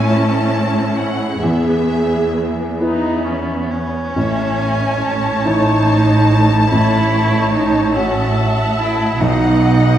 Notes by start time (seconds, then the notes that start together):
Already playing: A1 A2 C#4 E4
0.08 E4 C#5 A5
0.96 F#5
1.42 E2 B3 G#4 E5
2.79 B3 D#4 E4 B4
3.25 C#4
3.71 B3 C#4
4.16 A1 A2 C#5 E5 A5
4.60 G#5
5.03 A5
5.45 E3 D#4 C#5
6.71 A1 E4 C#5
7.54 D#4
7.95 C#4 F#4 C#5 E5 F#5 A5
8.79 E4
9.20 B1 B2 D#4 D#5 F#5